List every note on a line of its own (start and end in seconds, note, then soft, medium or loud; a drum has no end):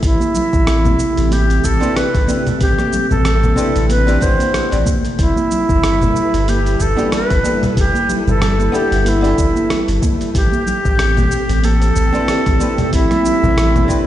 0.03 0.18 A1 medium
0.03 5.15 C3 medium
0.03 5.15 A3 medium
0.03 1.34 E4 loud
0.03 5.15 G4 medium
0.03 kick loud
0.03 open hi-hat medium
0.03 shaker soft
0.20 high conga medium
0.20 shaker soft
0.34 low conga medium
0.34 shaker medium
0.53 0.95 A1 medium
0.53 kick loud
0.53 shaker soft
0.67 cross-stick loud
0.67 open hi-hat medium
0.67 shaker medium
0.85 high conga medium
0.85 low conga medium
0.85 shaker soft
0.99 shaker medium
1.17 1.60 A1 loud
1.17 open hi-hat soft
1.17 shaker soft
1.31 1.66 G4 medium
1.31 open hi-hat medium
1.31 high conga medium
1.31 shaker soft
1.50 open hi-hat soft
1.50 shaker soft
1.64 1.79 A1 loud
1.64 1.98 A4 loud
1.64 kick medium
1.64 shaker medium
1.80 2.24 C4 medium
1.80 2.25 D4 medium
1.80 2.25 E4 medium
1.80 2.25 G4 medium
1.80 2.26 B4 loud
1.80 high conga medium
1.80 shaker soft
1.96 2.47 B4 loud
1.96 cross-stick loud
1.96 open hi-hat medium
1.96 shaker soft
2.14 2.26 A1 medium
2.14 kick loud
2.14 open hi-hat soft
2.14 shaker soft
2.27 2.44 C4 medium
2.27 2.44 D4 medium
2.27 2.45 E4 medium
2.27 2.45 G4 medium
2.27 2.45 B4 medium
2.27 high conga loud
2.27 shaker medium
2.47 open hi-hat soft
2.47 low conga medium
2.47 shaker soft
2.61 2.76 A1 medium
2.61 3.08 G4 loud
2.61 kick loud
2.61 open hi-hat medium
2.61 shaker soft
2.79 cross-stick soft
2.79 high conga loud
2.79 shaker soft
2.93 low conga medium
2.93 shaker medium
3.11 3.54 A1 medium
3.11 3.86 A4 loud
3.11 low conga medium
3.11 shaker soft
3.25 cross-stick loud
3.25 open hi-hat medium
3.25 shaker soft
3.43 high conga medium
3.43 low conga medium
3.43 shaker soft
3.56 4.03 C4 medium
3.56 4.03 D4 medium
3.56 4.04 E4 medium
3.56 4.04 G4 medium
3.56 4.04 B4 loud
3.56 shaker medium
3.76 4.18 A1 loud
3.76 open hi-hat soft
3.76 shaker soft
3.89 4.24 B4 loud
3.89 open hi-hat medium
3.89 high conga medium
3.89 shaker soft
4.07 4.19 C4 medium
4.07 4.19 D4 medium
4.07 4.19 E4 medium
4.07 4.20 G4 medium
4.07 4.20 B4 medium
4.07 open hi-hat soft
4.07 shaker soft
4.21 4.37 A1 medium
4.21 4.69 B3 loud
4.21 4.67 C4 loud
4.21 4.68 D4 medium
4.21 4.68 E4 medium
4.21 4.68 G4 medium
4.21 4.87 C5 loud
4.21 kick loud
4.21 shaker medium
4.39 open hi-hat soft
4.39 high conga medium
4.39 shaker soft
4.54 cross-stick medium
4.54 open hi-hat medium
4.54 shaker soft
4.71 4.84 A1 medium
4.71 4.80 C4 medium
4.71 4.80 D4 medium
4.71 4.80 E4 medium
4.71 4.81 G4 medium
4.71 4.81 D5 medium
4.71 open hi-hat soft
4.71 shaker soft
4.86 kick loud
4.86 high conga medium
4.86 shaker medium
5.05 open hi-hat soft
5.05 shaker soft
5.18 5.34 G1 loud
5.18 10.31 G3 medium
5.18 10.31 E4 medium
5.18 6.51 E4 loud
5.18 10.31 A4 medium
5.18 10.31 B4 loud
5.18 kick loud
5.18 open hi-hat medium
5.18 shaker soft
5.36 high conga medium
5.36 shaker soft
5.51 low conga medium
5.51 shaker medium
5.69 6.11 G1 medium
5.69 kick loud
5.69 shaker soft
5.84 cross-stick loud
5.84 open hi-hat medium
5.84 shaker soft
6.01 high conga medium
6.01 low conga medium
6.01 shaker soft
6.16 shaker medium
6.34 6.76 G1 loud
6.34 open hi-hat soft
6.34 shaker soft
6.48 6.83 G4 loud
6.48 open hi-hat medium
6.48 high conga medium
6.48 shaker soft
6.66 open hi-hat soft
6.66 shaker soft
6.80 6.95 G1 medium
6.80 7.13 A4 loud
6.80 kick medium
6.80 shaker medium
6.97 7.40 B3 medium
6.97 7.41 D4 medium
6.97 7.41 E4 medium
6.97 7.42 G4 medium
6.97 7.42 A4 loud
6.97 high conga medium
6.97 shaker soft
7.12 7.60 B4 loud
7.12 cross-stick medium
7.12 open hi-hat medium
7.12 shaker soft
7.30 7.42 G1 medium
7.30 kick loud
7.30 open hi-hat soft
7.30 shaker soft
7.43 7.60 B3 medium
7.43 7.60 D4 medium
7.43 7.61 E4 medium
7.43 7.61 G4 medium
7.43 7.61 A4 medium
7.43 high conga loud
7.43 shaker medium
7.63 open hi-hat soft
7.63 low conga medium
7.63 shaker soft
7.77 7.92 G1 loud
7.77 8.25 G4 loud
7.77 kick loud
7.77 open hi-hat medium
7.77 shaker soft
7.94 high conga medium
7.94 shaker soft
8.09 low conga medium
8.09 shaker medium
8.27 8.69 G1 medium
8.27 8.77 A4 loud
8.27 low conga medium
8.27 shaker soft
8.42 cross-stick loud
8.42 open hi-hat medium
8.42 shaker soft
8.59 high conga medium
8.59 shaker soft
8.72 9.19 B3 medium
8.72 9.19 D4 medium
8.72 9.20 E4 medium
8.72 9.20 G4 medium
8.72 9.10 G4 medium
8.72 9.20 A4 loud
8.72 shaker medium
8.92 9.34 G1 loud
8.92 open hi-hat soft
8.92 shaker soft
9.05 10.04 E4 medium
9.05 open hi-hat medium
9.05 high conga medium
9.05 shaker soft
9.21 10.32 B3 medium
9.21 10.32 D4 medium
9.21 10.33 E4 medium
9.21 open hi-hat soft
9.21 shaker soft
9.25 10.34 G4 medium
9.25 10.35 A4 loud
9.38 9.53 G1 medium
9.38 kick loud
9.38 shaker medium
9.55 high conga medium
9.55 shaker soft
9.70 cross-stick medium
9.70 open hi-hat medium
9.70 shaker soft
9.88 10.00 G1 medium
9.88 open hi-hat soft
9.88 shaker soft
10.02 kick loud
10.02 high conga medium
10.02 shaker medium
10.21 open hi-hat soft
10.21 shaker soft
10.34 10.50 A1 loud
10.34 14.07 A3 medium
10.34 14.07 C4 medium
10.34 14.07 G4 medium
10.34 11.66 G4 loud
10.34 kick loud
10.34 open hi-hat medium
10.34 shaker soft
10.52 high conga medium
10.52 shaker soft
10.66 low conga medium
10.66 shaker medium
10.85 11.28 A1 loud
10.85 kick loud
10.85 shaker soft
10.99 cross-stick loud
10.99 open hi-hat medium
10.99 shaker soft
11.17 high conga medium
11.17 low conga medium
11.17 shaker soft
11.31 shaker medium
11.49 11.92 A1 loud
11.49 open hi-hat soft
11.49 shaker soft
11.62 12.93 A4 loud
11.62 open hi-hat medium
11.62 high conga medium
11.62 shaker soft
11.82 open hi-hat soft
11.82 shaker soft
11.96 12.11 A1 medium
11.96 kick medium
11.96 shaker medium
12.13 12.56 C4 loud
12.13 12.57 D4 medium
12.13 12.57 E4 medium
12.13 12.58 G4 medium
12.13 12.58 B4 loud
12.13 high conga medium
12.13 shaker soft
12.28 cross-stick medium
12.28 open hi-hat medium
12.28 shaker soft
12.46 12.58 A1 medium
12.46 kick loud
12.46 open hi-hat soft
12.46 shaker soft
12.59 12.76 C4 medium
12.59 12.77 D4 medium
12.59 12.77 E4 medium
12.59 12.77 G4 medium
12.59 12.78 B4 medium
12.59 high conga medium
12.59 shaker medium
12.78 open hi-hat soft
12.78 low conga medium
12.78 shaker soft
12.93 13.08 A1 loud
12.93 14.07 E4 loud
12.93 kick loud
12.93 open hi-hat medium
12.93 shaker soft
13.11 cross-stick soft
13.11 open hi-hat soft
13.11 high conga medium
13.11 low conga medium
13.11 shaker soft
13.25 low conga medium
13.25 shaker medium
13.43 13.85 A1 medium
13.43 low conga medium
13.43 shaker soft
13.58 cross-stick loud
13.58 open hi-hat medium
13.58 shaker soft
13.75 high conga medium
13.75 low conga medium
13.75 shaker soft
13.88 14.07 C4 medium
13.88 14.07 D4 medium
13.88 14.07 E4 medium
13.88 14.07 G4 medium
13.88 14.07 B4 medium
13.88 kick medium
13.88 shaker medium